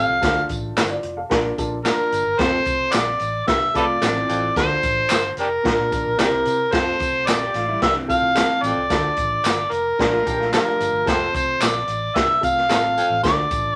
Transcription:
Already playing: F2 F5
0.09 C2
0.21 D2 A3 D4 F4 A4, kick, snare, closed hi-hat, tambourine
0.49 A1, kick, closed hi-hat, tambourine
0.76 G1 E4 C5, snare, clap, closed hi-hat, tambourine
0.90 F4 D5
1.03 F1, closed hi-hat
1.17 A4 F5
1.30 A#1 A#3 D4 F4 A#4, kick, snare, closed hi-hat
1.57 A#1 A#3 D4 F4 A4, kick, closed hi-hat, tambourine
1.84 A#3 D4 F4 A#4, snare, clap, closed hi-hat, tambourine
2.12 G1, closed hi-hat, tambourine
2.26 G1
2.38 F1 F2 A3 C4 F4 A4 C5, kick, snare, closed hi-hat, tambourine
2.65 C2, kick, closed hi-hat, tambourine
2.92 A#1 D5, snare, clap, closed hi-hat, tambourine
3.19 A1, closed hi-hat, tambourine
3.47 C2 G2 E5, kick, snare, closed hi-hat, tambourine
3.74 C2 A3 C4 F4 A4 B4 D5, kick, closed hi-hat, tambourine
4.01 A1 F3 A3 C4 D4 F4 A4, snare, clap, closed hi-hat, tambourine
4.15 E3 C4
4.29 A1 F2, closed hi-hat, tambourine
4.56 D2 A3 D4 F4 A4 C5, kick, snare, closed hi-hat, tambourine
4.83 A1, kick, closed hi-hat, tambourine
5.10 G1, snare, clap, closed hi-hat, tambourine
5.37 F1 D4 G4 A#4, closed hi-hat, tambourine
5.63 A#1 A#3 D4 F4 A#4, kick, snare, closed hi-hat
5.78 A#2
5.91 A#1 A#3 D4 F4 A#4, kick, closed hi-hat, tambourine
6.06 A#1
6.17 C2 C4 D4 E4 G4 A#4 C5, snare, clap, closed hi-hat, tambourine
6.32 C2
6.45 C3, closed hi-hat, tambourine
6.72 F1 F2 A3 C4 F4 A4 C5, kick, snare, crash, tambourine
6.99 C2, kick, closed hi-hat, tambourine
7.27 A#1 C4 A4 D5, snare, clap, closed hi-hat, tambourine
7.42 G4
7.54 A1 A3 F4, closed hi-hat
7.69 G3 E4
7.82 C2 G2 F3 D4 E5, kick, snare, closed hi-hat
7.96 E3 C4
8.08 A3 C4 F4 A4 F5, kick, closed hi-hat, tambourine
8.22 C2
8.35 A3 C4 A4 F5, snare, clap, closed hi-hat, tambourine
8.63 A1 F2 D5, closed hi-hat, tambourine
8.76 C2
8.90 D2 A3 D4 F4 A4, kick, snare, closed hi-hat, tambourine
9.16 A1, kick, closed hi-hat, tambourine
9.44 G1, snare, clap, closed hi-hat, tambourine
9.71 F1 A#4, closed hi-hat, tambourine
9.98 A#1 F3 A#3 D4 F4 A#4, kick, snare, closed hi-hat
10.13 A3 F4
10.25 A#1 A#3 D4 F4 G4 A4, kick, closed hi-hat, tambourine
10.40 A3 F4, snare
10.52 F3 D4 F4 G4 A#4, snare, clap, closed hi-hat, tambourine
10.80 G1, closed hi-hat, tambourine
10.93 G1
11.06 F1 F2 A3 C4 F4 A4 C5, kick, snare, closed hi-hat, tambourine
11.34 C2 C5, kick, closed hi-hat, tambourine
11.61 A#1 D5, snare, clap, closed hi-hat, tambourine
11.88 A1, closed hi-hat, tambourine
12.16 C2 G2 E5, kick, snare, closed hi-hat, tambourine
12.41 C2 A3 C4 F4 A4 F5, kick, closed hi-hat, tambourine
12.58 snare
12.69 A1 A3 C4 F4 A4, snare, clap, closed hi-hat, tambourine
12.97 F2, closed hi-hat, tambourine
13.10 A1
13.23 D2 A3 D4 F4 A4 D5, kick, snare, closed hi-hat, tambourine
13.51 A1, kick, closed hi-hat, tambourine

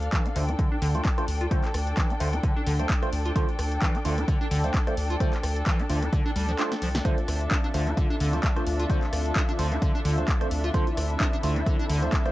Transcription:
Already playing: D4 A4 F5
0.03 closed hi-hat
0.13 E3, kick, clap, closed hi-hat
0.26 D4, closed hi-hat
0.36 D2 D3 A3 D4 F4 C5, open hi-hat
0.40 G5
0.49 F4, cross-stick, closed hi-hat
0.59 D3, kick, closed hi-hat
0.72 D4
0.82 D2 D3, open hi-hat
0.95 G3 A3 D4 F4 C5, closed hi-hat
1.05 kick, clap, closed hi-hat
1.18 A3 D4 F4 C5, cross-stick, closed hi-hat
1.28 D2, open hi-hat
1.41 F4, closed hi-hat
1.51 D3 A3 D4 F4 C5, kick, closed hi-hat
1.64 clap, closed hi-hat
1.74 D2, cross-stick, open hi-hat
1.87 closed hi-hat
1.97 E3, kick, clap, closed hi-hat
2.10 D4, closed hi-hat
2.20 D2 D3 A3 D4 F4 C5, open hi-hat
2.33 F4, cross-stick, closed hi-hat
2.43 D3, kick, closed hi-hat
2.56 D4
2.66 D2 D3, open hi-hat
2.79 G3 A3 D4 F4 C5, closed hi-hat
2.90 kick, clap, closed hi-hat
3.02 A3 D4 F4 C5, cross-stick, closed hi-hat
3.13 D2, open hi-hat
3.26 F4, closed hi-hat
3.36 D3 A3 D4 F4 C5, kick, closed hi-hat
3.49 closed hi-hat
3.59 D2, cross-stick, open hi-hat
3.72 closed hi-hat
3.82 E3, kick, clap, closed hi-hat
3.95 D4, closed hi-hat
4.05 D2 D3 A3 D4 F4 C5, open hi-hat
4.18 F4, cross-stick, closed hi-hat
4.28 D3, kick, closed hi-hat
4.41 D4
4.51 D2 D3, open hi-hat
4.64 G3 A3 D4 F4 C5, closed hi-hat
4.74 kick, clap, closed hi-hat
4.87 A3 D4 F4 C5, cross-stick, closed hi-hat
4.97 D2, open hi-hat
5.10 F4, closed hi-hat
5.20 D3 A3 D4 F4 C5, kick, closed hi-hat
5.33 clap, closed hi-hat
5.43 D2, cross-stick, open hi-hat
5.56 closed hi-hat
5.66 E3, kick, clap, closed hi-hat
5.79 D4, closed hi-hat
5.89 D2 D3 A3 D4 F4 C5, open hi-hat
6.02 F4, cross-stick, closed hi-hat
6.13 D3, kick, closed hi-hat
6.25 D4
6.36 D2 G3, open hi-hat
6.49 F3, closed hi-hat
6.59 A3 D4 F4 C5, clap, closed hi-hat
6.72 snare, closed hi-hat
6.82 C2 F3, open hi-hat
6.95 D3, snare, closed hi-hat
7.03 D3 A3 C4 D4 F4 C5 E5, kick, closed hi-hat
7.18 closed hi-hat
7.28 D2, cross-stick, open hi-hat
7.41 closed hi-hat
7.51 D4, kick, clap, closed hi-hat
7.64 D4, closed hi-hat
7.74 D2 D3 A3 D4 F4 C5, open hi-hat
7.87 F4, cross-stick, closed hi-hat
7.97 D3, kick, closed hi-hat
8.10 D4
8.20 D2 D3, open hi-hat
8.33 G3 A3 D4 F4 C5, closed hi-hat
8.43 kick, clap, closed hi-hat
8.56 A3 D4 F4 C5, cross-stick, closed hi-hat
8.67 D2, open hi-hat
8.79 F4, closed hi-hat
8.90 D3 A3 D4 F4 C5, kick, closed hi-hat
9.03 clap, closed hi-hat
9.13 D2, cross-stick, open hi-hat
9.26 closed hi-hat
9.36 D4, kick, clap, closed hi-hat
9.49 D4, closed hi-hat
9.59 D2 D3 A3 D4 F4 C5, open hi-hat
9.72 F4, cross-stick, closed hi-hat
9.82 D3, kick, closed hi-hat
9.95 D4
10.05 D2 D3, open hi-hat
10.18 G3 A3 D4 F4 C5, closed hi-hat
10.28 kick, clap, closed hi-hat
10.41 A3 D4 F4 C5, cross-stick, closed hi-hat
10.51 D2, open hi-hat
10.64 F4, closed hi-hat
10.74 D3 A3 D4 E4 F4 C5, kick, closed hi-hat
10.87 closed hi-hat
10.97 D2, cross-stick, open hi-hat
11.10 closed hi-hat
11.20 D4, kick, clap, closed hi-hat
11.33 D4, closed hi-hat
11.43 D2 D3 A3 D4 F4 C5, open hi-hat
11.56 F4, cross-stick, closed hi-hat
11.66 D3, kick, closed hi-hat
11.79 D4
11.90 D2 D3, open hi-hat
12.02 G3 A3 D4 F4 C5, closed hi-hat
12.13 kick, clap, closed hi-hat
12.26 A3 D4 F4 C5, cross-stick, closed hi-hat

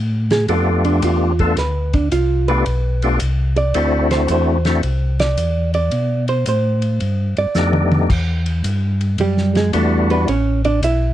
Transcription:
Already playing: A2
0.30 G#4, snare, ride
0.48 F2 A3 B3 D4 F4 G4 A4, ride
0.85 D4, ride
1.02 E2 F4, hi-hat pedal, ride
1.39 A3 B3 D4 F4 A4, kick, ride
1.57 D2 B4, snare, ride
1.93 D4, kick, ride
2.11 C2 F4, hi-hat pedal, ride
2.48 A3 B3 D4 F4 G4 B4, ride
2.66 B1, ride
3.02 A3 B3 D4 F4 G4, ride
3.20 C2, hi-hat pedal, ride
3.56 D5, ride
3.74 D2 A3 C4 D4 E4 F#4, ride
4.11 C5, snare, ride
4.28 E2 C5, hi-hat pedal, ride
4.65 A3 C4 D4 E4 F#4, snare, ride
4.83 C2, ride
5.19 D5, snare, ride
5.37 E2, hi-hat pedal, ride
5.74 D5, ride
5.91 B2, ride
6.28 C5, ride
6.46 A2 C5, hi-hat pedal, ride
6.82 ride
7.00 G2, ride
7.37 G2 D5, ride
7.55 F2 A3 B3 D4 D#4 G4, snare, hi-hat pedal
7.73 high tom
7.92 high tom
8.10 E2, kick, crash
8.46 ride
8.64 G2, hi-hat pedal, ride
9.01 ride
9.18 F#2 G3 G4, ride
9.37 snare
9.55 G#3 G#4, snare, ride
9.73 E2 G3 A3 B3 D4 E4 F#4 A4, hi-hat pedal, ride
10.10 B3 B4, ride
10.28 A1 C#4 C#5, ride
10.65 D4 D5, ride
10.82 B1 E4 E5, hi-hat pedal, ride

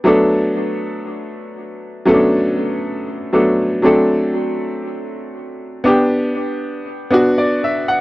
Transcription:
0.04 F#3 A3 B3 D4 A4
2.05 F#3 A3 B3 C#4 A4
2.14 D4
3.33 F#3 A3 B3 D4 A4
3.82 F#3 A3 C4 D4 A4
5.84 B3 D4 G4
7.11 B3 D4 F#4
7.38 D5
7.64 E5
7.88 F#5

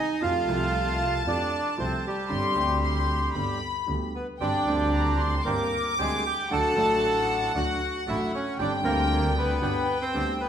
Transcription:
Already playing: D#4 D#5 G#5
0.20 F2 F3 A3 C4 F4 G4 F5 A5
0.47 C2 C3 F3 A3 C4 G4
1.26 F2 F3 A3 C4 D4 G4 D5
1.77 C2 C3 F3 A3 C4 G4 C5
2.07 G3 G4
2.29 G1 G2 D3 G3 C4 G4 C6
2.54 D2 D3 G3 C4 G4
2.81 C6
3.33 G1 G2 D3 G3 B3 G4 B5
3.87 D2 D3 G3 B3 G4
4.15 B3 B4
4.39 G1 G2 D3 G3 C4 D4 G4 D5 G5
4.66 D2 D3 G3 C4 D4 G4
4.93 A#5
5.19 C6
5.37 C5
5.45 G1 G2 D3 G3 A#3 C4 D4 G4 A#4 D6
5.98 D2 D3 G3 G#3 C4 D4 G4 G#4
6.26 G4 G5
6.50 D2 D3 F#3 A3 D4 F#4 A4 F#5 A5
6.75 A1 A2 D3 F#3 A3 D4 F#4
7.54 D2 D3 F#3 A3 D4 F#4 F#5
8.06 A1 A2 D3 F#3 A3 D4 E4 F#4 E5
8.34 C#4 C#5
8.58 G1 G2 D3 G3 C4 D4 G4 D5 G5
8.82 D2 D3 G3 A#3 C4 D4 G4 A#4
9.38 B3 B4
9.61 G1 G2 D3 G3 B3 D4 G4 G5
10.01 C4 C5
10.14 D2 D3 G3 B3 D4 G4
10.40 B3 B4

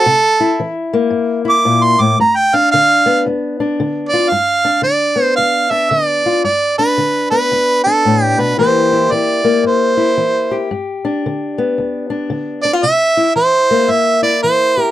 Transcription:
Already playing: A4
0.06 C3
0.40 E4
0.60 E3
0.93 A#3
1.10 G2
1.45 E4
1.50 D6
1.65 A#2
1.84 C6
2.00 A2 D6
2.20 G2 A#5
2.36 G5
2.54 D4 F5
2.72 D3 F5
3.06 B3
3.26 D2
3.60 D4
3.80 D3
4.09 D5
4.14 F4
4.29 G2 F5
4.65 D4
4.82 D3 D5
5.16 B3
5.36 D2 F5
5.71 D4 E5
5.91 D3 D5
6.26 F4
6.44 G2 D5
6.78 D4 B4
6.98 D3
7.31 B3 B4
7.52 D2
7.84 D4 A4
8.05 A2
8.24 G4
8.38 B2 B4
8.58 C3 E3 A#3 E4 G4 C5
8.92 E4
9.12 E3 D5
9.44 A#3
9.63 G2 C5
9.97 E4
10.17 E3
10.51 G4
10.71 G2
11.05 D4
11.26 D3
11.58 B3
11.78 D2
12.10 D4
12.30 D3
12.62 D4 D5
12.73 F4
12.83 C3 E5
13.17 E4
13.36 E3 C5
13.71 A#3
13.88 G2 E5
14.22 E4 D5
14.43 E3 C5
14.77 G4

